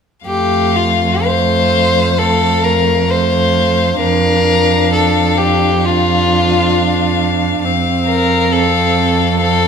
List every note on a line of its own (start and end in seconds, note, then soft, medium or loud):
0.25 3.98 F2 soft
0.25 1.22 A3 soft
0.25 0.77 G4 soft
0.25 1.21 F5 soft
0.76 1.26 F4 soft
1.25 2.17 A3 soft
1.25 2.20 C5 soft
1.25 2.17 F5 soft
2.18 3.09 A3 soft
2.18 2.65 A4 soft
2.18 3.09 F5 soft
2.64 3.11 A#4 soft
3.09 4.01 A3 soft
3.09 4.00 C5 soft
3.09 4.00 F5 soft
4.00 7.60 F2 soft
4.00 5.81 D4 soft
4.00 4.92 A#4 medium
4.00 5.80 F5 soft
4.94 5.39 A4 soft
5.38 5.86 G4 soft
5.85 7.66 D4 soft
5.85 7.20 F4 soft
5.85 7.61 F5 soft
7.63 9.68 F2 soft
7.63 8.51 C4 soft
7.63 8.50 F5 soft
8.07 8.53 A#4 soft
8.51 9.39 C4 soft
8.51 9.40 A4 soft
8.51 9.39 F5 soft
9.41 9.68 C4 soft
9.41 9.68 A4 medium
9.41 9.68 F5 soft